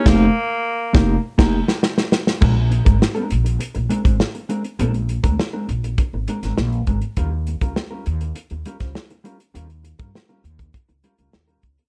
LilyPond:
<<
  \new Staff \with { instrumentName = "Clean electric guitar" } { \time 4/4 \key ees \major \tempo 4 = 101 <bes ees' g' c''>8 r4 <bes ees' g' bes'>8 r16 <bes ees' g' bes'>8 r4 r16 | <aes c' d' bes'>16 r8 <aes c' d' bes'>16 r16 <aes c' d' bes'>16 r4 <aes c' d' bes'>16 <aes c' d' c''>16 r8 <aes c' d' bes'>16 r16 | <aes c' d' bes'>16 r8 <aes c' d' bes'>16 r16 <aes c' d' bes'>16 r4 <aes c' d' bes'>16 <aes c' d' bes'>16 r8 <aes c' d' bes'>16 r16 | <g des' f' bes'>16 r8 <g des' f' bes'>16 r16 <g des' f' bes'>16 r4 <g des' f' bes'>16 <g des' f' c''>16 r8 <g des' f' bes'>16 r16 |
<g des' f' bes'>16 r8 <g des' f' bes'>16 r16 <g des' f' bes'>16 r4 <g des' f' bes'>16 <g des' f' bes'>16 r16 <g des' f' bes'>16 r8 | }
  \new Staff \with { instrumentName = "Tenor saxophone" } { \time 4/4 \key ees \major bes2 r2 | r1 | r1 | r1 |
r1 | }
  \new Staff \with { instrumentName = "Upright bass" } { \clef bass \time 4/4 \key ees \major f,,8 r4 f,,8 r16 f,,8 r4 r16 | bes,,8. aes,,16 r8 bes,,8 r16 bes,,16 r16 aes,,16 r4 | bes,,8. d,16 r8 bes,,8 r16 aes,,16 r16 aes,,16 bes,,8 aes,,16 r16 | ees,8. des,16 r8 ees,8 r16 ees,16 r16 des,16 r4 |
ees,8. g,16 r8 ees,8 r16 des,16 r16 des,16 ees,8 des,16 r16 | }
  \new DrumStaff \with { instrumentName = "Drums" } \drummode { \time 4/4 <cymc bd sn>4 r8 <bd sn>8 r16 <cymc bd sn>8 sn16 sn16 sn16 sn16 sn16 | <cymc bd>8 hh16 <hh bd>16 sn16 hh16 hh16 hh16 hh16 hh16 hh16 <hh bd>16 sn16 hh16 hh16 hh16 | hh16 hh16 hh16 <hh bd>16 sn8 hh16 hh16 <hh bd>8 hh16 <hh sn>16 sn16 hh16 <hh bd>16 hh16 | <hh bd>8 hh16 <hh bd>16 sn8 hh16 hh16 hh16 hh16 hh16 <hh bd sn>16 sn16 hh16 hh16 hh16 |
hh16 hh16 hh16 <hh bd>16 sn16 hh16 hh16 <hh bd>16 <hh bd>16 hh16 hh16 hh16 sn16 hh16 <hh bd>16 hh16 | }
>>